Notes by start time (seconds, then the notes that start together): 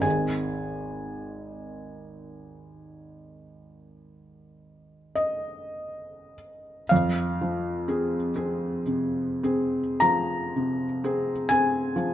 0.00 G#1 D#3 C4 G#4 G#5
5.15 D#5
6.89 F2 F5
7.41 F3
7.88 C4 G#4
8.36 C4 G#4
8.87 C3
9.43 C4 G#4
10.00 F3 A#5
10.56 C3
11.04 C4 G#4
11.49 C4 G#4 G#5
11.96 F3